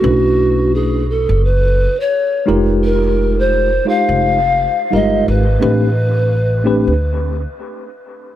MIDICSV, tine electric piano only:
0, 0, Header, 1, 2, 480
1, 0, Start_track
1, 0, Tempo, 697674
1, 25, Time_signature, 4, 2, 24, 8
1, 5750, End_track
2, 0, Start_track
2, 0, Title_t, "Tine electric piano"
2, 0, Program_c, 0, 4
2, 9, Note_on_c, 0, 57, 56
2, 14, Note_on_c, 0, 61, 55
2, 20, Note_on_c, 0, 62, 54
2, 21, Note_on_c, 0, 64, 55
2, 27, Note_on_c, 0, 71, 61
2, 697, Note_off_c, 0, 57, 0
2, 700, Note_off_c, 0, 61, 0
2, 703, Note_off_c, 0, 62, 0
2, 703, Note_off_c, 0, 64, 0
2, 707, Note_off_c, 0, 71, 0
2, 1690, Note_on_c, 0, 56, 73
2, 1696, Note_on_c, 0, 63, 80
2, 1702, Note_on_c, 0, 65, 79
2, 1706, Note_on_c, 0, 67, 74
2, 1709, Note_on_c, 0, 70, 84
2, 2548, Note_off_c, 0, 56, 0
2, 2551, Note_off_c, 0, 63, 0
2, 2554, Note_off_c, 0, 65, 0
2, 2556, Note_off_c, 0, 67, 0
2, 2558, Note_off_c, 0, 70, 0
2, 2650, Note_on_c, 0, 56, 57
2, 2653, Note_on_c, 0, 63, 62
2, 2661, Note_on_c, 0, 65, 52
2, 2663, Note_on_c, 0, 67, 57
2, 2671, Note_on_c, 0, 72, 64
2, 3010, Note_off_c, 0, 56, 0
2, 3012, Note_off_c, 0, 63, 0
2, 3016, Note_off_c, 0, 65, 0
2, 3017, Note_off_c, 0, 67, 0
2, 3021, Note_off_c, 0, 72, 0
2, 3375, Note_on_c, 0, 55, 53
2, 3378, Note_on_c, 0, 63, 62
2, 3384, Note_on_c, 0, 65, 59
2, 3389, Note_on_c, 0, 67, 63
2, 3395, Note_on_c, 0, 70, 69
2, 3420, Note_on_c, 0, 56, 73
2, 3433, Note_off_c, 0, 55, 0
2, 3734, Note_off_c, 0, 63, 0
2, 3737, Note_off_c, 0, 65, 0
2, 3740, Note_off_c, 0, 67, 0
2, 3743, Note_off_c, 0, 70, 0
2, 3755, Note_off_c, 0, 56, 0
2, 3852, Note_on_c, 0, 57, 71
2, 3856, Note_on_c, 0, 60, 61
2, 3860, Note_on_c, 0, 62, 55
2, 3864, Note_on_c, 0, 67, 66
2, 3870, Note_on_c, 0, 71, 76
2, 4039, Note_off_c, 0, 57, 0
2, 4041, Note_off_c, 0, 60, 0
2, 4043, Note_off_c, 0, 62, 0
2, 4045, Note_off_c, 0, 67, 0
2, 4048, Note_off_c, 0, 71, 0
2, 4569, Note_on_c, 0, 57, 74
2, 4573, Note_on_c, 0, 60, 73
2, 4579, Note_on_c, 0, 62, 68
2, 4582, Note_on_c, 0, 67, 76
2, 4589, Note_on_c, 0, 71, 91
2, 4758, Note_off_c, 0, 57, 0
2, 4760, Note_off_c, 0, 60, 0
2, 4763, Note_off_c, 0, 62, 0
2, 4764, Note_off_c, 0, 67, 0
2, 4767, Note_off_c, 0, 71, 0
2, 5750, End_track
0, 0, End_of_file